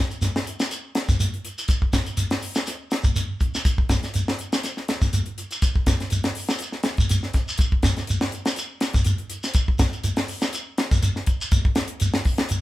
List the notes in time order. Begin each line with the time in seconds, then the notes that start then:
0.10 closed hi-hat, shekere
0.22 snare, closed hi-hat, shekere
0.36 snare
0.47 closed hi-hat, shekere
0.59 snare, closed hi-hat, shekere
0.71 closed hi-hat, shekere
0.95 snare, closed hi-hat, shekere
1.08 kick, snare, closed hi-hat, shekere
1.20 closed hi-hat, shekere
1.34 closed hi-hat
1.45 closed hi-hat, shekere
1.58 closed hi-hat, shekere
1.68 kick, closed hi-hat, shekere
1.82 kick
1.93 kick, snare, closed hi-hat, shekere
2.06 closed hi-hat, shekere
2.17 closed hi-hat, shekere
2.31 snare, closed hi-hat
2.42 open hi-hat, shekere
2.55 snare, closed hi-hat, shekere
2.66 snare, closed hi-hat, shekere
2.91 snare, closed hi-hat, shekere
3.04 kick, closed hi-hat, shekere
3.16 closed hi-hat, shekere
3.40 kick, closed hi-hat, shekere
3.55 snare, shekere
3.65 kick, closed hi-hat, shekere
3.78 kick
3.89 kick, snare, closed hi-hat, shekere
4.03 snare, closed hi-hat, shekere
4.14 closed hi-hat, shekere
4.28 snare
4.39 closed hi-hat, shekere
4.52 snare, closed hi-hat, shekere
4.63 snare, closed hi-hat, shekere
4.77 snare
4.88 snare, closed hi-hat, shekere
5.02 kick, snare, closed hi-hat, shekere
5.13 closed hi-hat, shekere
5.26 closed hi-hat
5.38 closed hi-hat, shekere
5.51 closed hi-hat, shekere
5.62 kick, closed hi-hat, shekere
5.76 kick
5.86 kick, snare, closed hi-hat, shekere
6.00 snare, closed hi-hat, shekere
6.10 closed hi-hat, shekere
6.24 snare, closed hi-hat
6.35 open hi-hat, shekere
6.48 snare, closed hi-hat, shekere
6.59 closed hi-hat, shekere
6.72 snare
6.83 snare, closed hi-hat, shekere
6.97 kick, closed hi-hat, shekere
7.09 closed hi-hat, shekere
7.23 snare
7.33 kick, snare, closed hi-hat, shekere
7.49 shekere
7.58 kick, closed hi-hat, shekere
7.72 kick
7.83 kick, snare, closed hi-hat, shekere
7.97 snare, closed hi-hat, shekere
8.07 closed hi-hat, shekere
8.21 snare
8.32 closed hi-hat, shekere
8.45 snare, closed hi-hat, shekere
8.56 closed hi-hat, shekere
8.81 snare, closed hi-hat, shekere
8.93 kick, snare, closed hi-hat, shekere
9.05 closed hi-hat, shekere
9.18 closed hi-hat
9.30 closed hi-hat, shekere
9.43 snare, closed hi-hat, shekere
9.54 kick, closed hi-hat, shekere
9.68 kick
9.79 kick, snare, closed hi-hat, shekere
9.93 closed hi-hat, shekere
10.04 closed hi-hat, shekere
10.16 snare, closed hi-hat
10.28 open hi-hat, shekere
10.41 snare, closed hi-hat, shekere
10.53 closed hi-hat, shekere
10.78 snare, closed hi-hat, shekere
10.91 kick, snare, closed hi-hat, shekere
11.02 closed hi-hat, shekere
11.16 snare
11.26 kick, closed hi-hat, shekere
11.41 shekere
11.51 kick, closed hi-hat, shekere
11.65 kick
11.75 snare, closed hi-hat, shekere
11.88 closed hi-hat
12.00 closed hi-hat, shekere
12.14 snare
12.25 kick, open hi-hat, shekere
12.38 snare, closed hi-hat
12.49 closed hi-hat, shekere